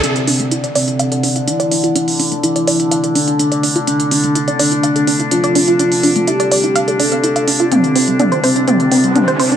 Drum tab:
HH |xxoxxxoxxxoxxxox|xooxxxoxxxoxxxox|xxoxxxoxxxoxxxox|xooxxxoxxxoxxxox|
T2 |----------------|----------------|----------------|----------------|

HH |xxoxxxoxxxoxxxox|
T2 |o---o---o---o---|